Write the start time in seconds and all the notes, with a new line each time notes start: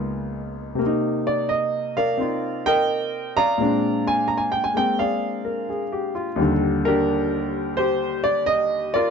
Already playing: C#2 C#3 A#3 B3 D#4 F4
0.75 C3 A#3
0.86 D#4
1.27 D5
1.49 D#5
1.97 A#4 D5 F5
2.17 C4 D#4 F4
2.66 A#4 D#5 G5
3.37 D5 F5 A#5
3.58 A#2 G#3 C4
3.62 D4
4.07 G#5
4.28 A#5
4.37 G#5
4.52 G5
4.64 G#5
4.74 G#3 A#3 C4 G5
4.99 G#4 D5 F5
5.45 A#4
5.69 G#4
5.92 G4
6.15 F4
6.36 D#2 D#3 G3
6.41 D3
6.85 D4 G4 A#4
7.77 G4 C5
8.24 D5
8.46 D#5
8.94 F4 A#4 D5